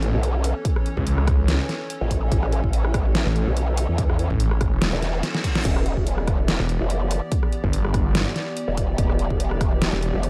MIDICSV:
0, 0, Header, 1, 6, 480
1, 0, Start_track
1, 0, Tempo, 416667
1, 749, Time_signature, 4, 2, 24, 8
1, 11863, End_track
2, 0, Start_track
2, 0, Title_t, "Ambient pad"
2, 0, Program_c, 0, 92
2, 0, Note_on_c, 0, 52, 84
2, 0, Note_on_c, 0, 61, 78
2, 0, Note_on_c, 0, 69, 74
2, 0, Note_on_c, 0, 73, 92
2, 6462, Note_off_c, 0, 52, 0
2, 6462, Note_off_c, 0, 61, 0
2, 6462, Note_off_c, 0, 69, 0
2, 6462, Note_off_c, 0, 73, 0
2, 6509, Note_on_c, 0, 52, 84
2, 6509, Note_on_c, 0, 59, 75
2, 6509, Note_on_c, 0, 67, 76
2, 6509, Note_on_c, 0, 74, 95
2, 11863, Note_off_c, 0, 52, 0
2, 11863, Note_off_c, 0, 59, 0
2, 11863, Note_off_c, 0, 67, 0
2, 11863, Note_off_c, 0, 74, 0
2, 11863, End_track
3, 0, Start_track
3, 0, Title_t, "Detuned saw bass"
3, 0, Program_c, 1, 39
3, 0, Note_on_c, 1, 33, 101
3, 137, Note_off_c, 1, 33, 0
3, 1118, Note_on_c, 1, 37, 99
3, 1818, Note_off_c, 1, 37, 0
3, 3758, Note_on_c, 1, 33, 99
3, 3977, Note_off_c, 1, 33, 0
3, 4958, Note_on_c, 1, 33, 99
3, 5418, Note_off_c, 1, 33, 0
3, 5438, Note_on_c, 1, 28, 97
3, 5658, Note_off_c, 1, 28, 0
3, 7598, Note_on_c, 1, 28, 96
3, 7818, Note_off_c, 1, 28, 0
3, 8798, Note_on_c, 1, 31, 105
3, 9498, Note_off_c, 1, 31, 0
3, 11438, Note_on_c, 1, 28, 103
3, 11658, Note_off_c, 1, 28, 0
3, 11863, End_track
4, 0, Start_track
4, 0, Title_t, "Wobble bass"
4, 0, Program_c, 2, 39
4, 158, Note_on_c, 2, 35, 97
4, 617, Note_off_c, 2, 35, 0
4, 2318, Note_on_c, 2, 33, 100
4, 2651, Note_off_c, 2, 33, 0
4, 2668, Note_on_c, 2, 33, 95
4, 3017, Note_off_c, 2, 33, 0
4, 3038, Note_on_c, 2, 33, 99
4, 3737, Note_off_c, 2, 33, 0
4, 3998, Note_on_c, 2, 35, 99
4, 4457, Note_off_c, 2, 35, 0
4, 4478, Note_on_c, 2, 40, 101
4, 4937, Note_off_c, 2, 40, 0
4, 5678, Note_on_c, 2, 28, 94
4, 6011, Note_off_c, 2, 28, 0
4, 6509, Note_on_c, 2, 28, 99
4, 6858, Note_off_c, 2, 28, 0
4, 6878, Note_on_c, 2, 28, 100
4, 7578, Note_off_c, 2, 28, 0
4, 7838, Note_on_c, 2, 30, 98
4, 8298, Note_off_c, 2, 30, 0
4, 9998, Note_on_c, 2, 28, 96
4, 10331, Note_off_c, 2, 28, 0
4, 10348, Note_on_c, 2, 28, 98
4, 10697, Note_off_c, 2, 28, 0
4, 10718, Note_on_c, 2, 28, 100
4, 11417, Note_off_c, 2, 28, 0
4, 11678, Note_on_c, 2, 30, 98
4, 11863, Note_off_c, 2, 30, 0
4, 11863, End_track
5, 0, Start_track
5, 0, Title_t, "Reverse cymbal"
5, 0, Program_c, 3, 119
5, 5548, Note_on_c, 3, 60, 62
5, 6508, Note_off_c, 3, 60, 0
5, 11863, End_track
6, 0, Start_track
6, 0, Title_t, "Drums"
6, 29, Note_on_c, 9, 42, 50
6, 144, Note_off_c, 9, 42, 0
6, 269, Note_on_c, 9, 42, 77
6, 384, Note_off_c, 9, 42, 0
6, 509, Note_on_c, 9, 46, 93
6, 624, Note_off_c, 9, 46, 0
6, 748, Note_on_c, 9, 36, 117
6, 748, Note_on_c, 9, 42, 74
6, 864, Note_off_c, 9, 36, 0
6, 864, Note_off_c, 9, 42, 0
6, 879, Note_on_c, 9, 37, 56
6, 989, Note_on_c, 9, 42, 53
6, 994, Note_off_c, 9, 37, 0
6, 1104, Note_off_c, 9, 42, 0
6, 1118, Note_on_c, 9, 36, 59
6, 1228, Note_on_c, 9, 42, 75
6, 1233, Note_off_c, 9, 36, 0
6, 1344, Note_off_c, 9, 42, 0
6, 1359, Note_on_c, 9, 37, 56
6, 1468, Note_on_c, 9, 36, 104
6, 1469, Note_off_c, 9, 37, 0
6, 1469, Note_on_c, 9, 37, 64
6, 1469, Note_on_c, 9, 42, 52
6, 1584, Note_off_c, 9, 36, 0
6, 1584, Note_off_c, 9, 37, 0
6, 1584, Note_off_c, 9, 42, 0
6, 1709, Note_on_c, 9, 38, 117
6, 1709, Note_on_c, 9, 42, 76
6, 1824, Note_off_c, 9, 38, 0
6, 1824, Note_off_c, 9, 42, 0
6, 1948, Note_on_c, 9, 38, 37
6, 1948, Note_on_c, 9, 42, 52
6, 2064, Note_off_c, 9, 38, 0
6, 2064, Note_off_c, 9, 42, 0
6, 2188, Note_on_c, 9, 42, 77
6, 2304, Note_off_c, 9, 42, 0
6, 2428, Note_on_c, 9, 36, 63
6, 2428, Note_on_c, 9, 46, 94
6, 2543, Note_off_c, 9, 36, 0
6, 2543, Note_off_c, 9, 46, 0
6, 2668, Note_on_c, 9, 36, 120
6, 2668, Note_on_c, 9, 42, 76
6, 2783, Note_off_c, 9, 36, 0
6, 2783, Note_off_c, 9, 42, 0
6, 2798, Note_on_c, 9, 37, 56
6, 2908, Note_on_c, 9, 42, 54
6, 2913, Note_off_c, 9, 37, 0
6, 3024, Note_off_c, 9, 42, 0
6, 3038, Note_on_c, 9, 36, 56
6, 3148, Note_on_c, 9, 42, 80
6, 3153, Note_off_c, 9, 36, 0
6, 3263, Note_off_c, 9, 42, 0
6, 3278, Note_on_c, 9, 37, 55
6, 3388, Note_off_c, 9, 37, 0
6, 3388, Note_on_c, 9, 36, 104
6, 3388, Note_on_c, 9, 37, 64
6, 3388, Note_on_c, 9, 42, 53
6, 3503, Note_off_c, 9, 37, 0
6, 3503, Note_off_c, 9, 42, 0
6, 3504, Note_off_c, 9, 36, 0
6, 3628, Note_on_c, 9, 38, 119
6, 3628, Note_on_c, 9, 42, 79
6, 3744, Note_off_c, 9, 38, 0
6, 3744, Note_off_c, 9, 42, 0
6, 3868, Note_on_c, 9, 42, 53
6, 3983, Note_off_c, 9, 42, 0
6, 4109, Note_on_c, 9, 42, 78
6, 4224, Note_off_c, 9, 42, 0
6, 4348, Note_on_c, 9, 46, 99
6, 4464, Note_off_c, 9, 46, 0
6, 4588, Note_on_c, 9, 36, 118
6, 4588, Note_on_c, 9, 42, 83
6, 4703, Note_off_c, 9, 36, 0
6, 4704, Note_off_c, 9, 42, 0
6, 4718, Note_on_c, 9, 37, 54
6, 4829, Note_on_c, 9, 42, 55
6, 4834, Note_off_c, 9, 37, 0
6, 4944, Note_off_c, 9, 42, 0
6, 4958, Note_on_c, 9, 36, 59
6, 5068, Note_on_c, 9, 42, 82
6, 5073, Note_off_c, 9, 36, 0
6, 5184, Note_off_c, 9, 42, 0
6, 5198, Note_on_c, 9, 37, 52
6, 5308, Note_off_c, 9, 37, 0
6, 5308, Note_on_c, 9, 36, 105
6, 5308, Note_on_c, 9, 37, 63
6, 5308, Note_on_c, 9, 42, 53
6, 5423, Note_off_c, 9, 37, 0
6, 5423, Note_off_c, 9, 42, 0
6, 5424, Note_off_c, 9, 36, 0
6, 5548, Note_on_c, 9, 38, 118
6, 5548, Note_on_c, 9, 42, 83
6, 5664, Note_off_c, 9, 38, 0
6, 5664, Note_off_c, 9, 42, 0
6, 5789, Note_on_c, 9, 38, 36
6, 5789, Note_on_c, 9, 42, 54
6, 5904, Note_off_c, 9, 38, 0
6, 5904, Note_off_c, 9, 42, 0
6, 6028, Note_on_c, 9, 38, 62
6, 6028, Note_on_c, 9, 42, 80
6, 6143, Note_off_c, 9, 38, 0
6, 6143, Note_off_c, 9, 42, 0
6, 6158, Note_on_c, 9, 38, 64
6, 6268, Note_on_c, 9, 36, 63
6, 6269, Note_on_c, 9, 46, 103
6, 6274, Note_off_c, 9, 38, 0
6, 6384, Note_off_c, 9, 36, 0
6, 6384, Note_off_c, 9, 46, 0
6, 6399, Note_on_c, 9, 38, 86
6, 6509, Note_on_c, 9, 36, 123
6, 6509, Note_on_c, 9, 42, 84
6, 6509, Note_on_c, 9, 49, 77
6, 6514, Note_off_c, 9, 38, 0
6, 6624, Note_off_c, 9, 36, 0
6, 6624, Note_off_c, 9, 42, 0
6, 6624, Note_off_c, 9, 49, 0
6, 6638, Note_on_c, 9, 37, 51
6, 6748, Note_on_c, 9, 42, 57
6, 6754, Note_off_c, 9, 37, 0
6, 6864, Note_off_c, 9, 42, 0
6, 6878, Note_on_c, 9, 36, 60
6, 6989, Note_on_c, 9, 42, 87
6, 6994, Note_off_c, 9, 36, 0
6, 7104, Note_off_c, 9, 42, 0
6, 7118, Note_on_c, 9, 37, 52
6, 7228, Note_on_c, 9, 36, 109
6, 7229, Note_off_c, 9, 37, 0
6, 7229, Note_on_c, 9, 37, 60
6, 7229, Note_on_c, 9, 42, 54
6, 7344, Note_off_c, 9, 36, 0
6, 7344, Note_off_c, 9, 37, 0
6, 7344, Note_off_c, 9, 42, 0
6, 7469, Note_on_c, 9, 38, 120
6, 7469, Note_on_c, 9, 42, 86
6, 7584, Note_off_c, 9, 38, 0
6, 7584, Note_off_c, 9, 42, 0
6, 7708, Note_on_c, 9, 42, 56
6, 7824, Note_off_c, 9, 42, 0
6, 7948, Note_on_c, 9, 42, 84
6, 8064, Note_off_c, 9, 42, 0
6, 8188, Note_on_c, 9, 46, 97
6, 8303, Note_off_c, 9, 46, 0
6, 8428, Note_on_c, 9, 36, 127
6, 8428, Note_on_c, 9, 42, 85
6, 8543, Note_off_c, 9, 42, 0
6, 8544, Note_off_c, 9, 36, 0
6, 8558, Note_on_c, 9, 37, 51
6, 8668, Note_on_c, 9, 42, 55
6, 8673, Note_off_c, 9, 37, 0
6, 8784, Note_off_c, 9, 42, 0
6, 8798, Note_on_c, 9, 36, 62
6, 8908, Note_on_c, 9, 42, 83
6, 8913, Note_off_c, 9, 36, 0
6, 9023, Note_off_c, 9, 42, 0
6, 9038, Note_on_c, 9, 37, 53
6, 9148, Note_off_c, 9, 37, 0
6, 9148, Note_on_c, 9, 36, 111
6, 9148, Note_on_c, 9, 37, 59
6, 9148, Note_on_c, 9, 42, 59
6, 9263, Note_off_c, 9, 36, 0
6, 9263, Note_off_c, 9, 37, 0
6, 9263, Note_off_c, 9, 42, 0
6, 9388, Note_on_c, 9, 38, 126
6, 9388, Note_on_c, 9, 42, 84
6, 9503, Note_off_c, 9, 38, 0
6, 9503, Note_off_c, 9, 42, 0
6, 9628, Note_on_c, 9, 38, 40
6, 9628, Note_on_c, 9, 42, 57
6, 9743, Note_off_c, 9, 38, 0
6, 9743, Note_off_c, 9, 42, 0
6, 9868, Note_on_c, 9, 42, 83
6, 9984, Note_off_c, 9, 42, 0
6, 10108, Note_on_c, 9, 36, 69
6, 10108, Note_on_c, 9, 46, 100
6, 10223, Note_off_c, 9, 36, 0
6, 10224, Note_off_c, 9, 46, 0
6, 10348, Note_on_c, 9, 36, 127
6, 10349, Note_on_c, 9, 42, 83
6, 10463, Note_off_c, 9, 36, 0
6, 10464, Note_off_c, 9, 42, 0
6, 10478, Note_on_c, 9, 37, 54
6, 10588, Note_on_c, 9, 42, 57
6, 10594, Note_off_c, 9, 37, 0
6, 10704, Note_off_c, 9, 42, 0
6, 10718, Note_on_c, 9, 36, 64
6, 10829, Note_on_c, 9, 42, 84
6, 10833, Note_off_c, 9, 36, 0
6, 10944, Note_off_c, 9, 42, 0
6, 10958, Note_on_c, 9, 37, 52
6, 11068, Note_on_c, 9, 36, 113
6, 11069, Note_off_c, 9, 37, 0
6, 11069, Note_on_c, 9, 37, 62
6, 11069, Note_on_c, 9, 42, 56
6, 11183, Note_off_c, 9, 36, 0
6, 11184, Note_off_c, 9, 37, 0
6, 11184, Note_off_c, 9, 42, 0
6, 11309, Note_on_c, 9, 38, 127
6, 11309, Note_on_c, 9, 42, 84
6, 11424, Note_off_c, 9, 38, 0
6, 11424, Note_off_c, 9, 42, 0
6, 11549, Note_on_c, 9, 42, 54
6, 11664, Note_off_c, 9, 42, 0
6, 11789, Note_on_c, 9, 42, 85
6, 11863, Note_off_c, 9, 42, 0
6, 11863, End_track
0, 0, End_of_file